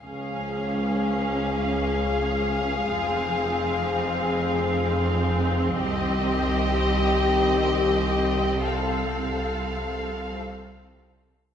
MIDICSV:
0, 0, Header, 1, 7, 480
1, 0, Start_track
1, 0, Tempo, 500000
1, 11083, End_track
2, 0, Start_track
2, 0, Title_t, "Violin section"
2, 0, Program_c, 0, 48
2, 29, Note_on_c, 0, 77, 41
2, 5476, Note_off_c, 0, 77, 0
2, 5520, Note_on_c, 0, 75, 62
2, 8251, Note_off_c, 0, 75, 0
2, 8268, Note_on_c, 0, 77, 48
2, 10934, Note_off_c, 0, 77, 0
2, 11083, End_track
3, 0, Start_track
3, 0, Title_t, "Violin section"
3, 0, Program_c, 1, 48
3, 21, Note_on_c, 1, 68, 40
3, 5472, Note_off_c, 1, 68, 0
3, 5515, Note_on_c, 1, 67, 66
3, 8249, Note_off_c, 1, 67, 0
3, 8277, Note_on_c, 1, 69, 48
3, 10901, Note_off_c, 1, 69, 0
3, 11083, End_track
4, 0, Start_track
4, 0, Title_t, "French horn section"
4, 0, Program_c, 2, 60
4, 43, Note_on_c, 2, 53, 43
4, 52, Note_on_c, 2, 68, 44
4, 5483, Note_off_c, 2, 53, 0
4, 5487, Note_off_c, 2, 68, 0
4, 5499, Note_on_c, 2, 67, 74
4, 5503, Note_on_c, 2, 51, 66
4, 8113, Note_off_c, 2, 51, 0
4, 8113, Note_off_c, 2, 67, 0
4, 8276, Note_on_c, 2, 69, 50
4, 8278, Note_on_c, 2, 53, 53
4, 10782, Note_off_c, 2, 69, 0
4, 10783, Note_off_c, 2, 53, 0
4, 11083, End_track
5, 0, Start_track
5, 0, Title_t, "Viola section"
5, 0, Program_c, 3, 48
5, 28, Note_on_c, 3, 61, 39
5, 2753, Note_off_c, 3, 61, 0
5, 2786, Note_on_c, 3, 60, 52
5, 8245, Note_off_c, 3, 60, 0
5, 8282, Note_on_c, 3, 60, 45
5, 10903, Note_off_c, 3, 60, 0
5, 11083, End_track
6, 0, Start_track
6, 0, Title_t, "Cello section"
6, 0, Program_c, 4, 48
6, 23, Note_on_c, 4, 37, 39
6, 2750, Note_off_c, 4, 37, 0
6, 2800, Note_on_c, 4, 41, 54
6, 5481, Note_off_c, 4, 41, 0
6, 5516, Note_on_c, 4, 36, 64
6, 10906, Note_off_c, 4, 36, 0
6, 11083, End_track
7, 0, Start_track
7, 0, Title_t, "Double bass section"
7, 0, Program_c, 5, 48
7, 22, Note_on_c, 5, 37, 42
7, 2750, Note_off_c, 5, 37, 0
7, 2790, Note_on_c, 5, 29, 51
7, 5476, Note_off_c, 5, 29, 0
7, 5512, Note_on_c, 5, 36, 66
7, 10904, Note_off_c, 5, 36, 0
7, 11083, End_track
0, 0, End_of_file